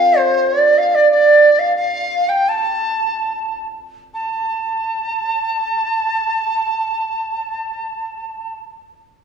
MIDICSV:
0, 0, Header, 1, 3, 480
1, 0, Start_track
1, 0, Tempo, 644468
1, 841, Time_signature, 2, 2, 24, 8
1, 1329, Tempo, 692841
1, 1809, Tempo, 768246
1, 2289, Tempo, 879765
1, 2769, Tempo, 918836
1, 4209, Tempo, 943396
1, 5411, End_track
2, 0, Start_track
2, 0, Title_t, "Dizi"
2, 0, Program_c, 0, 73
2, 0, Note_on_c, 0, 77, 82
2, 126, Note_on_c, 0, 72, 66
2, 137, Note_off_c, 0, 77, 0
2, 348, Note_on_c, 0, 74, 71
2, 359, Note_off_c, 0, 72, 0
2, 576, Note_on_c, 0, 77, 80
2, 587, Note_off_c, 0, 74, 0
2, 702, Note_on_c, 0, 74, 73
2, 713, Note_off_c, 0, 77, 0
2, 820, Note_off_c, 0, 74, 0
2, 824, Note_on_c, 0, 74, 73
2, 1180, Note_on_c, 0, 77, 72
2, 1191, Note_off_c, 0, 74, 0
2, 1306, Note_off_c, 0, 77, 0
2, 1310, Note_on_c, 0, 77, 80
2, 1675, Note_on_c, 0, 79, 74
2, 1685, Note_off_c, 0, 77, 0
2, 1811, Note_on_c, 0, 81, 76
2, 1821, Note_off_c, 0, 79, 0
2, 2522, Note_off_c, 0, 81, 0
2, 2772, Note_on_c, 0, 81, 67
2, 5073, Note_off_c, 0, 81, 0
2, 5411, End_track
3, 0, Start_track
3, 0, Title_t, "Hammered dulcimer"
3, 0, Program_c, 1, 15
3, 0, Note_on_c, 1, 60, 61
3, 0, Note_on_c, 1, 62, 48
3, 0, Note_on_c, 1, 65, 61
3, 0, Note_on_c, 1, 67, 65
3, 160, Note_off_c, 1, 67, 0
3, 208, Note_off_c, 1, 60, 0
3, 683, Note_off_c, 1, 65, 0
3, 1202, Note_off_c, 1, 62, 0
3, 5411, End_track
0, 0, End_of_file